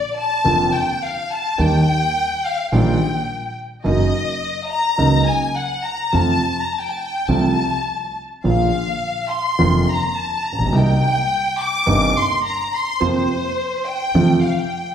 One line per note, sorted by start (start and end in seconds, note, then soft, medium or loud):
0.00 0.14 D5 medium
0.18 0.75 A5 medium
0.44 0.69 F1 medium
0.44 0.70 F1 medium
0.44 0.70 F2 medium
0.44 0.69 D3 medium
0.44 0.69 A#3 medium
0.44 0.70 C4 medium
0.44 0.69 F4 medium
0.74 1.03 G5 medium
1.03 1.32 F5 medium
1.31 1.59 A5 medium
1.58 1.83 D#2 medium
1.58 1.83 D#3 medium
1.58 1.83 G3 medium
1.58 1.83 A#3 medium
1.58 1.83 G4 medium
1.58 2.46 G5 medium
2.46 2.74 F5 medium
2.72 2.96 A#1 medium
2.72 2.97 A#2 medium
2.72 2.96 D#3 medium
2.72 2.96 G3 medium
2.72 2.97 A#3 medium
2.72 2.97 G4 medium
2.72 3.53 G5 medium
3.84 4.10 F#1 medium
3.84 4.09 F#2 medium
3.84 4.09 C#3 medium
3.84 4.09 F#3 medium
3.84 4.09 A#3 medium
3.84 4.09 D#4 medium
3.84 4.66 D#5 medium
4.71 5.28 A#5 loud
4.98 5.23 C#2 medium
4.98 5.23 C#3 medium
4.98 5.22 F#3 medium
4.98 5.23 A#3 medium
4.98 5.23 D#4 medium
5.26 5.55 G#5 medium
5.55 5.84 F#5 medium
5.84 6.13 A#5 medium
6.13 6.37 F2 medium
6.13 6.38 F2 medium
6.13 6.37 C3 medium
6.13 6.37 F3 medium
6.13 6.37 A3 medium
6.13 6.37 F4 medium
6.13 6.63 A5 medium
6.61 6.71 A#5 medium
6.72 6.81 A5 medium
6.80 6.90 G5 medium
6.90 6.99 A5 medium
6.99 7.28 G5 medium
7.27 7.52 C2 medium
7.27 7.53 C2 medium
7.27 7.53 C3 medium
7.27 7.53 F3 medium
7.27 7.53 A3 medium
7.27 7.53 F4 medium
7.27 8.15 A5 medium
8.44 8.69 A#1 medium
8.44 8.69 A#2 medium
8.44 8.69 D3 medium
8.44 8.69 F3 medium
8.44 8.69 A#3 medium
8.44 8.69 F4 medium
8.44 9.27 F5 medium
9.30 9.88 C6 medium
9.59 9.83 F1 medium
9.59 9.84 F1 medium
9.59 9.83 F2 medium
9.59 9.83 D3 medium
9.59 9.83 F3 medium
9.59 9.83 A#3 medium
9.59 9.83 F4 medium
9.91 10.18 A#5 medium
10.18 10.46 A5 medium
10.46 10.74 A#5 medium
10.52 10.60 A1 soft
10.52 10.59 A1 soft
10.59 10.66 A#1 medium
10.59 10.65 A#1 medium
10.65 10.73 B1 medium
10.65 10.72 B1 medium
10.72 10.97 C2 medium
10.72 10.97 C3 medium
10.72 10.97 G3 medium
10.72 10.98 A#3 medium
10.72 10.97 D#4 medium
10.77 11.61 G5 loud
11.59 12.16 D6 loud
11.86 12.11 G1 medium
11.86 12.11 G2 medium
11.86 12.11 C3 medium
11.86 12.11 G3 medium
11.86 12.11 A#3 medium
11.86 12.11 D#4 medium
12.18 12.46 C6 medium
12.46 12.72 A#5 medium
12.75 13.02 C6 medium
13.01 13.25 F2 medium
13.01 13.25 C3 medium
13.01 13.25 F3 medium
13.01 13.25 A#3 medium
13.01 13.25 F4 medium
13.01 13.87 C5 medium
13.86 14.43 G5 loud
14.14 14.38 F2 medium
14.14 14.38 C3 medium
14.14 14.39 F3 medium
14.14 14.39 A3 medium
14.14 14.39 F4 medium
14.43 14.57 F5 medium
14.58 14.95 G5 medium